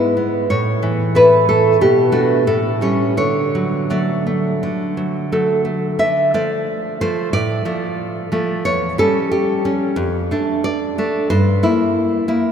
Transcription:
Already playing: G#2 G#3 B3 E4
0.17 B3
0.50 A2 C#5
0.82 E3
1.15 A3 E4 B4
1.49 A3 A4
1.81 B2 G4
2.12 A3 D4 F#4
2.47 A2 A4
2.81 G3 C#4 C#5
3.17 D3 C#5
3.55 F#3
3.90 F#3 A3 D5
4.27 A3
4.63 D3
4.97 F#3
5.32 F#3 A3 A4
5.65 A3
5.99 D3 E5
6.34 F3 A3 D5
7.01 F3 A3 C5
7.33 A2 D5
7.65 F3 A3
8.32 F3 A3
8.65 E2 C#5
8.98 G3 C#4 A4
9.31 G4
9.65 G3 C#4
9.96 F2
10.31 A3 D4
10.64 D5
10.98 A3 D4
11.30 G2 C5
11.63 A#3 E4
12.28 A#3 E4

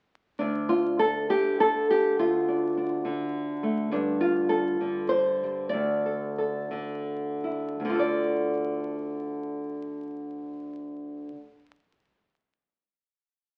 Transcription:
0.39 D2 D4
0.69 F4
0.99 A4
1.29 D3 G4
1.60 A4
1.90 G4
2.19 D2 F4
2.48 D4
2.77 D4
3.05 D3
3.63 A3
3.91 G2 D4
4.21 F4
4.49 A4
4.81 D3
5.09 C5
5.44 G3
5.69 D2 D5
6.06 A4
6.38 A4
6.71 D3
7.44 E4
7.80 D2
7.85 D3
7.89 F4
7.95 A4
7.99 D5

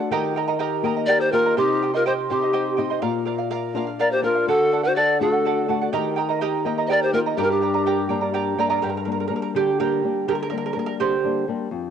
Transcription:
Already playing: A3 D4 F#4
0.00 D5 F#5
0.11 D#3 G4 A#4 D#5 G5 A#5
0.36 A#4 D#5 G5 A#5
0.48 A#4 D#5 A#5
0.59 G4 A#4 D#5 G5 A#5
0.83 A#3 D#4 G4 A#4 D#5 G5 A#5
0.96 A#4 D#5 A#5
1.06 G4 A#4 D5 D#5 G5 A#5
1.20 G4 C5
1.32 A#3 D#4 F4 G4 A#4 D#5 G5 A#5
1.45 A#4 D#5 A#5
1.57 C3 D#4 G4 C5 D#5 G5 C6
1.82 C5 D#5 G5 C6
1.93 F4 A#4 C5 D#5 C6
2.06 G4 C5 D#5 G5 C6
2.30 C4 D#4 G4 C5 D#5 G5 C6
2.42 C5 D#5 C6
2.53 G4 C5 D#5 G5 C6
2.77 C4 D#4 G4 C5 D#5 G5 C6
2.90 C5 D#5 C6
3.02 A#2 A#4 D5 F5
3.25 A#4 D5 F5
3.38 D5 F5
3.50 A#4 D5 F5
3.74 A#3 D4 F4 A#4 D5 F5
3.87 D5 F5
3.99 A#4 D5 F5
4.11 G4 C5
4.23 A#3 D4 F4 A#4 D5 F5
4.35 D5 F5
4.48 D3 F#4 A4 D5 F#5
4.72 A4 D5 F#5
4.83 F#4 C5 D5 F#5
4.96 A4 D5 F#5
5.20 A3 D4 F#4 A4 D5 F#5
5.32 D5 F#5
5.45 A4 D5 F#5
5.68 A3 D4 F#4 A4 D5 F#5
5.81 D5 F#5
5.93 D#3 G4 A#4 D#5 G5 A#5
6.16 A#4 D#5 G5 A#5
6.29 A#4 D#5 A#5
6.41 G4 A#4 D#5 G5 A#5
6.65 A#3 D#4 G4 A#4 D#5 G5 A#5
6.78 A#4 D#5 A#5
6.87 G4 A#4 C5 D#5 G5
6.91 A#4 D5 A#5
7.02 G4 C5
7.13 A#3 D#4 F4 G4 A#4 D#5 G5 A#5
7.26 A#4 D#5 A#5
7.37 G2 D4 G4 A#4 D5 G5 A#5
7.43 G4 A#4
7.51 D4 G4
7.61 A#4 D5 G5 A#5
7.74 A#4 D5 A#5
7.86 G4 A#4 D5 G5 A#5
8.09 G3 A#3 D4 A#4 D5 G5 A#5
8.21 A#4 D5 A#5
8.34 G4 A#4 D5 G5 A#5
8.58 G3 A#3 D4 A#4 D5 G5 A#5
8.70 A#4 D5 A#5
8.82 G2 G4 A#4
8.90 A#4
8.97 A#4
9.05 G3 A#3 D4 A#4
9.12 A#4
9.20 A#4
9.28 G3 A#3 D4 A#4
9.36 A#4
9.42 A#4
9.55 D3 G4 D5
9.80 G3 A#3 D4 G4 A#4
10.04 G3 A#3 D4
10.28 D3 G4 A#4
10.35 A#4
10.43 A#4
10.50 G3 A#3 D4 A#4
10.58 A#4
10.66 A#4
10.73 G3 A#3 D4 A#4
10.79 A#4
10.86 A#4
11.00 D3 G4 C5
11.24 G3 A#3 D4
11.48 G3 A#3 D4
11.71 F2

